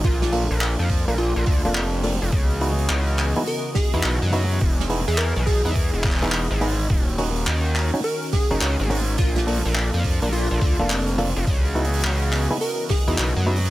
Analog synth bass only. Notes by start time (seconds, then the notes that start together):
0.04 A#1
0.51 A#1
0.79 F2
1.08 A#1
1.36 A#1
1.47 D2
1.65 F1
2.22 F1
2.33 C#2
2.90 C#2
3.94 E2
4.04 B1
4.22 F#2
4.61 E1
5.08 E2
5.36 B1
5.65 E2
5.93 E1
6.51 G#1
6.90 D#1
7.47 D#2
8.51 F#1
8.62 C#2
8.80 G#1
9.19 A#1
9.65 A#1
9.94 F2
10.23 A#1
10.51 A#1
10.62 D2
10.79 F1
11.36 F1
11.47 C#2
12.04 C#2
13.08 E2
13.18 B1
13.36 F#2